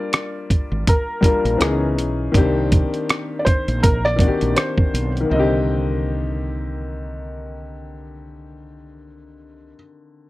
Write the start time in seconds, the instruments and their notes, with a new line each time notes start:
Already playing: upright piano G3 A#3 D4 F4 A#4, felt piano D5
0.13 cross-stick, closed hi-hat
0.50 kick, closed hi-hat
0.72 fretless electric bass G#1
0.87 felt piano A#4, kick, closed hi-hat
1.21 upright piano G3 A#3 D4 F4, kick, closed hi-hat
1.26 upright piano A#4
1.45 fretless electric bass A#1, closed hi-hat
1.57 fretless electric bass C#2, upright piano E3 B3 C#4 D#4, closed hi-hat
1.62 upright piano G#4, cross-stick
1.98 fretless electric bass B1, closed hi-hat
2.32 fretless electric bass C2, upright piano D#3 A#3 C4 D4, kick, closed hi-hat
2.37 upright piano G4
2.72 kick, closed hi-hat
2.94 closed hi-hat
3.09 cross-stick, closed hi-hat
3.39 felt piano D5
3.45 felt piano C5, kick, closed hi-hat
3.68 fretless electric bass A#1, closed hi-hat
3.83 felt piano A#4, kick, closed hi-hat
4.05 felt piano D5, cross-stick
4.16 upright piano D#3 A#3 C4 D4, kick
4.20 upright piano F#4, closed hi-hat
4.28 upright piano G4
4.41 fretless electric bass A#1, closed hi-hat
4.57 felt piano C5, cross-stick, closed hi-hat
4.78 kick
4.94 fretless electric bass B1, closed hi-hat
5.17 upright piano D#3, closed hi-hat
5.25 upright piano A#3
5.30 fretless electric bass C2, upright piano C4, felt piano D#5
5.35 upright piano D3
5.39 upright piano G4